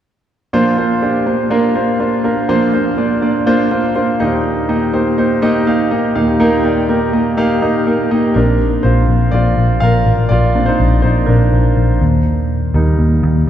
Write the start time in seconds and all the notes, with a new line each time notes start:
0.53 A#2 F3 A#3 D4 F4 C5
0.78 A#3 D4 F4 C5
1.02 A#3 D4 F4 G4
1.26 A#3 D4 F4 C5
1.50 A#3 D4 F4 A#4
1.75 A#3 D4 F4 C5
2.00 A#3 D4 F4 C5
2.24 A#3 D4 F4 A#4
2.49 A#2 F3 A#3 D4 F4 C5
2.73 A#3 D4 F4 C5
2.98 A#3 D4 F4 D5
3.22 A#3 D4 F4 D5
3.46 A#3 D4 F4 C5
3.71 A#3 D4 F4 C5
3.95 A#3 D4 F4 C5
4.20 D#2 A#2 A#3 D#4 G4 D#5
4.69 A#3 D#4 G4 D#5
4.93 A#3 D#4 G4 C5
5.18 A#3 D#4 G4 C5
5.42 A#3 D#4 G4 D#5
5.67 A#3 D#4 G4 F5
5.91 A#3 D#4 G4 D#5
6.15 D#2 A#2 A#3 D#4 G4 F5
6.40 A#3 D#4 G4 A#4
6.64 A#3 D#4 G4 D5
6.89 A#3 D#4 G4 A#4
7.13 A#3 D#4 G4 D#5
7.37 A#3 D#4 G4 F5
7.62 A#3 D#4 G4 D#5
7.86 A#3 D#4 G4 A#4
8.11 A#3 D#4 G4 D#5
8.34 A#1 A#3 C4 D4 A#4
8.83 A#1 F4 C5
9.09 A#1
9.31 A#1 F4 D5
9.58 A#1
9.80 A#1 A#4 F5
10.06 A1
10.29 A#1 F4 D5
10.54 A#3 C4 D4
10.66 D#4 C5
10.80 A#1
11.02 A#1 D#4 C5
11.26 A#1 D4 A#4
11.53 A#1
11.77 A#1
12.01 D#2
12.74 D#2 G3 A#3 D#4
12.99 D#2
13.23 D#2